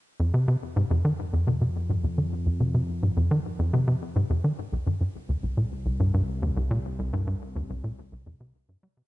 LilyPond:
<<
  \new Staff \with { instrumentName = "Analog synth bass" } { \clef bass \time 4/4 \key f \minor \tempo 4 = 106 r16 f,16 c16 c16 r16 aes,16 f,16 ees16 r16 f,16 c16 c16 r16 aes,16 f,16 ees16 | r16 f,16 c16 c16 r16 aes,16 f,16 ees16 r16 f,16 c16 c16 r16 aes,16 f,16 ees16 | r16 c,16 g,16 g,16 r16 ees,16 c,16 bes,16 r16 c,16 g,16 g,16 r16 ees,16 c,16 bes,16 | r16 c,16 g,16 g,16 r16 ees,16 c,16 bes,16 r16 c,16 f,16 c16 r16 g,16 g16 c16 | }
  \new Staff \with { instrumentName = "Synth drone" } { \clef bass \time 4/4 \key f \minor f,1~ | f,1 | c,1~ | c,1 | }
>>